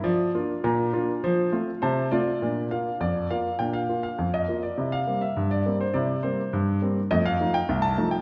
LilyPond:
<<
  \new Staff \with { instrumentName = "Grand piano" } { \time 2/4 \key bes \major \tempo 4 = 102 r2 | r4 c''8 d''8~ | d''8 f''8 d''8 f''8 | g''16 f''8 f''8 ees''8 d''16~ |
d''16 f''8 e''8 d''8 c''16 | d''8 c''8 r4 | ees''16 f''8 g''8 a''8 g''16 | }
  \new Staff \with { instrumentName = "Grand piano" } { \time 2/4 \key bes \major <f d''>8 <bes d' f'>8 <bes, bes''>8 <bes d' f'>8 | <f c''>8 <a c' f'>8 <c a''>8 <a c' f'>8 | <bes, d'>8 <bes f'>8 f,8 <bes f'>8 | <bes, d'>8 <bes f'>8 f,8 <bes f'>8 |
<c e'>8 <g bes c'>8 g,8 <g bes c'>8 | <c e'>8 <g bes c'>8 g,8 <g bes c'>8 | <f, a>8 <f a ees'>8 c,8 <f a ees'>8 | }
>>